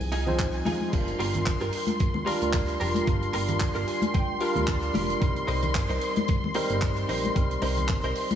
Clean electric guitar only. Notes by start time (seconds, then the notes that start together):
0.12 D#4 F4 G#4
0.66 D#4 F4 G#4
1.19 F4 G4 A#4
1.46 muted clean electric guitar stroke
1.61 F4 G4 A#4
2.26 F4 G4 A#4
2.80 F4 G4 A#4
3.33 F4 G4 A#4
3.60 muted clean electric guitar stroke
3.75 F4 G4 A#4
3.87 G#5
4.14 G5
4.40 F4 G4 A#4 F5
4.67 D5
4.94 F4 G4 A#4
5.47 D#4 A#4 C5
5.75 muted clean electric guitar stroke
5.89 D#4 A#4 C5
6.55 D#4 A#4 C5
7.09 D#4 A#4 C5
7.62 D#4 A#4 C5
7.89 muted clean electric guitar stroke
8.04 D#4 A#4 C5